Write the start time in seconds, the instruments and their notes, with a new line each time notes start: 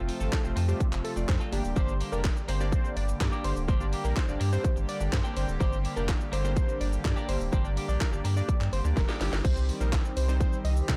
Already playing: sub bass F1, analog synth pad C3 F3 A3 F4, synth keys A3 C4 F4 C5
0.08 clean electric guitar C4 F4 A4, open hi-hat, shaker
0.20 sub bass G1, clean electric guitar C4 F4 A4, analog synth lead A4, shaker
0.32 analog synth lead A4, kick, snare, clap, closed hi-hat, shaker
0.44 sub bass F1, synth keys A3 C4 F4 C5, muted clean electric guitar stroke, shaker
0.56 sub bass F2, clean electric guitar C4 F4 A4, open hi-hat, shaker
0.68 synth keys A3 C4 F4 C5, analog synth lead G4, muted clean electric guitar stroke, shaker
0.80 muted clean electric guitar stroke, kick, closed hi-hat, shaker
0.92 sub bass F1, muted clean electric guitar stroke, clap, shaker
1.04 analog synth lead A4, open hi-hat, shaker
1.16 sub bass F1, synth keys A3 C4 F4 D5, muted clean electric guitar stroke, shaker
1.28 sub bass F2, analog synth lead C5, muted clean electric guitar stroke, kick, snare, clap, closed hi-hat, shaker
1.40 clean electric guitar C4 F4 A4, shaker
1.52 sub bass G1, analog synth pad D3 G3 A#3 G4, clean electric guitar A#3 D4 G4, synth keys A#3 D4 G4 D5, analog synth lead G4, open hi-hat, shaker
1.65 sub bass D1, shaker
1.76 sub bass G1, clean electric guitar A#3 D4 G4, analog synth lead C5, kick, closed hi-hat, shaker
1.88 shaker
2.00 clean electric guitar A#3 D4 G4, open hi-hat, shaker
2.12 sub bass F1, synth keys A#3 D4 G4 D5, clean electric guitar A#3 D4 G4, analog synth lead A#4, shaker
2.24 kick, snare, clap, closed hi-hat, shaker
2.36 muted clean electric guitar stroke, shaker
2.48 sub bass G1, clean electric guitar A#3 D4 G4, analog synth lead C5, open hi-hat, shaker
2.60 synth keys A#3 D4 G4 D5, muted clean electric guitar stroke, shaker
2.72 analog synth lead C5, muted clean electric guitar stroke, kick, closed hi-hat, shaker
2.84 muted clean electric guitar stroke, shaker
2.96 sub bass G1, analog synth lead D5, open hi-hat, shaker
3.08 muted clean electric guitar stroke, shaker
3.20 sub bass G2, synth keys A#3 D4 G4 D5, muted clean electric guitar stroke, kick, snare, clap, closed hi-hat, shaker
3.32 clean electric guitar A#3 D4 G4, shaker
3.44 sub bass G1, clean electric guitar A#3 D4 G4, analog synth lead C5, open hi-hat, shaker
3.56 sub bass D1, muted clean electric guitar stroke, shaker
3.68 sub bass G1, clean electric guitar A#3 D4 G4, analog synth lead C5, kick, closed hi-hat, shaker
3.80 synth keys A#3 D4 G4 D5, shaker
3.92 clean electric guitar A#3 D4 G4, open hi-hat, shaker
4.04 sub bass A#1, clean electric guitar A#3 D4 G4, analog synth lead A#4, shaker
4.16 analog synth lead C5, kick, snare, clap, closed hi-hat, shaker
4.28 sub bass G1, synth keys A#3 D4 G4 D5, muted clean electric guitar stroke, shaker
4.40 sub bass G2, clean electric guitar A#3 D4 G4, open hi-hat, shaker
4.52 synth keys A#3 D4 G4 C5, analog synth lead C5, muted clean electric guitar stroke, shaker
4.64 muted clean electric guitar stroke, kick, closed hi-hat, shaker
4.76 sub bass G1, muted clean electric guitar stroke, shaker
4.88 analog synth lead D5, open hi-hat, shaker
5.00 sub bass G1, synth keys A#3 D4 G4 D5, muted clean electric guitar stroke, shaker
5.12 sub bass G2, analog synth lead C5, muted clean electric guitar stroke, kick, snare, clap, closed hi-hat, shaker
5.24 clean electric guitar A#3 D4 G4, shaker
5.36 sub bass G1, clean electric guitar A#3 D4 G4, analog synth lead C5, open hi-hat, shaker
5.48 sub bass D1, muted clean electric guitar stroke, shaker
5.60 sub bass G1, clean electric guitar A#3 D4 G4, analog synth lead C5, kick, closed hi-hat, shaker
5.73 shaker
5.84 clean electric guitar A#3 D4 G4, open hi-hat, shaker
5.96 sub bass F1, synth keys A#3 D4 G4 D5, clean electric guitar A#3 D4 G4, analog synth lead A#4, shaker
6.09 kick, snare, clap, closed hi-hat, shaker
6.20 muted clean electric guitar stroke, shaker
6.32 sub bass G1, clean electric guitar A#3 D4 G4, analog synth lead C5, open hi-hat, shaker
6.44 synth keys A#3 D4 G4 C5, muted clean electric guitar stroke, shaker
6.56 analog synth lead C5, muted clean electric guitar stroke, kick, closed hi-hat, shaker
6.68 muted clean electric guitar stroke, shaker
6.81 sub bass G1, analog synth lead D5, open hi-hat, shaker
6.92 muted clean electric guitar stroke, shaker
7.04 sub bass G2, synth keys A#3 D4 G4 D5, muted clean electric guitar stroke, kick, snare, clap, closed hi-hat, shaker
7.16 clean electric guitar A#3 D4 G4, shaker
7.28 sub bass G1, clean electric guitar A#3 D4 G4, analog synth lead C5, open hi-hat, shaker
7.41 sub bass D1, muted clean electric guitar stroke, shaker
7.52 sub bass G1, clean electric guitar A#3 D4 G4, analog synth lead C5, kick, closed hi-hat, shaker
7.64 synth keys A#3 D4 G4 D5, shaker
7.76 clean electric guitar A#3 D4 G4, open hi-hat, shaker
7.88 sub bass A#1, clean electric guitar A#3 D4 G4, analog synth lead D5, shaker
8.00 analog synth lead A#4, kick, snare, clap, closed hi-hat, shaker
8.12 sub bass G1, synth keys A#3 D4 G4 D5, muted clean electric guitar stroke, shaker
8.24 sub bass G2, clean electric guitar A#3 D4 G4, open hi-hat, shaker
8.36 synth keys A#3 D4 G4 D5, analog synth lead D5, muted clean electric guitar stroke, shaker
8.48 muted clean electric guitar stroke, kick, closed hi-hat, shaker
8.61 sub bass G2, muted clean electric guitar stroke, clap, shaker
8.73 sub bass G1, analog synth lead C5, open hi-hat, shaker
8.85 sub bass D2, synth keys A#3 D4 G4 D5, muted clean electric guitar stroke, shaker
8.97 sub bass F1, analog synth lead A#4, muted clean electric guitar stroke, kick, snare, closed hi-hat, shaker
9.08 clean electric guitar A#3 D4 G4, snare, shaker
9.20 sub bass G1, clean electric guitar A#3 D4 G4, analog synth lead G4, snare, open hi-hat, shaker
9.33 sub bass G1, snare, shaker
9.44 sub bass C2, analog synth pad D#3 G3 C4 G4, analog synth lead C5, kick, closed hi-hat, crash, shaker
9.57 shaker
9.69 open hi-hat, shaker
9.80 sub bass A#1, synth keys G3 C4 D#4 C5, analog synth lead A#4, shaker
9.93 kick, snare, clap, closed hi-hat, shaker
10.05 shaker
10.17 sub bass C2, analog synth lead C5, open hi-hat, shaker
10.28 synth keys G3 C4 D#4 C5, shaker
10.41 analog synth lead C5, kick, closed hi-hat, shaker
10.53 shaker
10.64 sub bass C2, analog synth lead D#5, open hi-hat, shaker
10.77 shaker
10.88 sub bass C3, synth keys G3 C4 D#4 A4, kick, snare, clap, closed hi-hat, shaker